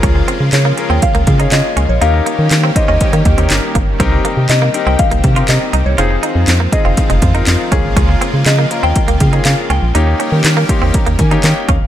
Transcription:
Already playing: C#3 F3 G#3 A#3 C#4 F4 G#4 A#4
0.03 C#2 C#4, kick, closed hi-hat
0.16 muted clean electric guitar stroke
0.28 C4, closed hi-hat
0.40 C#3
0.53 C#3 C#5, snare, clap, closed hi-hat
0.65 A#3
0.77 C#4 F4 G#4 A#4, muted clean electric guitar stroke, closed hi-hat
0.90 D#2 C4 G5
1.02 F5, kick, closed hi-hat
1.15 C#2 A#3, closed hi-hat
1.27 C#3, muted clean electric guitar stroke, kick, closed hi-hat
1.39 C#4 D#4 F4 G#4 C#5, closed hi-hat
1.52 C#3 D#5, snare, clap, closed hi-hat
1.77 C#2 C#4, closed hi-hat
1.89 A#1 C#5
2.01 D#2 D#3 G3 C#4 D#4 G4 A#4 F5, closed hi-hat
2.14 muted clean electric guitar stroke
2.26 A#3, closed hi-hat
2.39 D#3
2.51 D#3, snare, clap, closed hi-hat
2.64 C4
2.76 C#4 D#4 G4 C5 D#5, muted clean electric guitar stroke, kick, closed hi-hat
2.88 D#2 C#4 D#5
3.01 kick, closed hi-hat
3.13 D#3 A#3, closed hi-hat
3.25 D#2, muted clean electric guitar stroke, kick, closed hi-hat
3.38 D#2 C4 C#4 D#4 G4 A#4, closed hi-hat
3.50 G1, snare, clap, closed hi-hat
3.75 G1 A#3, kick, closed hi-hat
4.00 C2 C4 D#4 G4 A#4, kick, closed hi-hat
4.12 muted clean electric guitar stroke
4.25 A#3, closed hi-hat
4.37 C3
4.49 C3 D#5, snare, clap, closed hi-hat
4.62 A#3
4.74 C4 D#4 G4 A#4, muted clean electric guitar stroke, closed hi-hat
4.87 C2 C4 G5
4.99 F5, kick, closed hi-hat
5.11 C2 A#3, closed hi-hat
5.24 C3, muted clean electric guitar stroke, kick, closed hi-hat
5.36 C4 D#4 F4 G4 A#4, closed hi-hat
5.48 C3 D#5, snare, clap, closed hi-hat
5.73 C2 D#4, closed hi-hat
5.86 C2 C#5
5.98 F1 F3 G#3 C4 D#4 F4 G#4 C5, closed hi-hat
6.11 muted clean electric guitar stroke
6.23 D#4, closed hi-hat
6.35 F2
6.48 F2, snare, clap, closed hi-hat
6.60 A#3
6.72 C4 D#4 F4 G#4 D#5, muted clean electric guitar stroke, kick, closed hi-hat
6.85 F1 C4 F5
6.97 kick, closed hi-hat
7.10 F1 G#3, closed hi-hat
7.22 F2, muted clean electric guitar stroke, kick, closed hi-hat
7.34 C4 D#4 F4 A#4, closed hi-hat
7.47 F2, snare, clap, closed hi-hat
7.71 C#2 C#3 A#3 C#4 F4 G#4, kick, closed hi-hat
7.84 G#1
7.97 C#2 C#4, kick, closed hi-hat
8.09 muted clean electric guitar stroke
8.21 C4, closed hi-hat
8.34 C#3
8.46 C#3 D#5, snare, clap, closed hi-hat
8.58 A#3
8.71 A#3 C#4 F4 A#4, muted clean electric guitar stroke, closed hi-hat
8.83 D#2 C4 G5
8.96 kick, closed hi-hat
9.08 C#2 A#3, closed hi-hat
9.20 C#3, muted clean electric guitar stroke, kick, closed hi-hat
9.33 A#3 C#4 D#4 F4 G#4, closed hi-hat
9.45 C#3 F5, snare, clap, closed hi-hat
9.70 C#2 C#4 G5, closed hi-hat
9.83 A#1
9.95 D#2 D#3 G3 A#3 C#4 D#4 G4, closed hi-hat
10.07 muted clean electric guitar stroke
10.20 C#4, closed hi-hat
10.32 D#3
10.44 D#3, snare, clap, closed hi-hat
10.57 A#3
10.69 A#3 C#4 D#4 G4 C6, muted clean electric guitar stroke, kick, closed hi-hat
10.82 D#2 C4
10.94 A#5, kick, closed hi-hat
11.06 D#2 A#3, closed hi-hat
11.19 D#3 G#5, muted clean electric guitar stroke, kick, closed hi-hat
11.31 A#3 C#4 D#4 G4, closed hi-hat
11.44 D#3 G5, snare, clap, closed hi-hat
11.69 D#2 C#4 F5, kick, closed hi-hat
11.81 G1

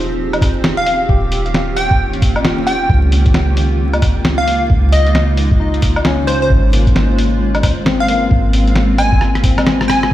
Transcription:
Already playing: D#1 D#3 A#3 C4 C#4 F4 G4
0.33 closed hi-hat, low woodblock
0.42 kick, open hi-hat, low woodblock
0.64 snare
0.77 F5
0.86 open hi-hat
1.09 D#1 G4, kick
1.32 open hi-hat
1.46 closed hi-hat
1.54 snare
1.77 G5, open hi-hat
1.91 kick
2.13 closed hi-hat
2.22 kick, open hi-hat
2.36 low woodblock
2.45 F4, snare
2.67 G5, open hi-hat
2.89 C#2 C#3 G#3 D#4, kick
3.12 open hi-hat
3.26 kick, closed hi-hat
3.34 snare
3.57 open hi-hat
3.93 closed hi-hat, low woodblock
4.02 kick, open hi-hat, low woodblock
4.25 snare
4.38 F5
4.48 open hi-hat
4.70 C#2, kick
4.92 D#5, open hi-hat
5.07 closed hi-hat
5.15 snare
5.37 open hi-hat
5.51 kick
5.60 D#4
5.74 closed hi-hat
5.82 kick, open hi-hat
5.96 low woodblock
6.05 C#4, snare
6.27 C5, open hi-hat
6.42 C5
6.50 G#1 C4, kick
6.73 A#3, open hi-hat
6.87 kick, closed hi-hat
6.96 snare
7.19 open hi-hat
7.55 closed hi-hat, low woodblock
7.63 kick, open hi-hat, low woodblock
7.86 C4, snare
8.00 F5
8.08 A#3, open hi-hat
8.31 G#1, kick
8.53 open hi-hat
8.67 closed hi-hat
8.76 snare
8.98 G#5, open hi-hat, low woodblock
9.12 kick
9.21 cross-stick
9.35 cross-stick, closed hi-hat
9.44 C4, kick, open hi-hat
9.58 cross-stick, closed hi-hat, low woodblock
9.67 cross-stick, snare
9.81 cross-stick
9.88 G#5, cross-stick, open hi-hat
10.03 cross-stick

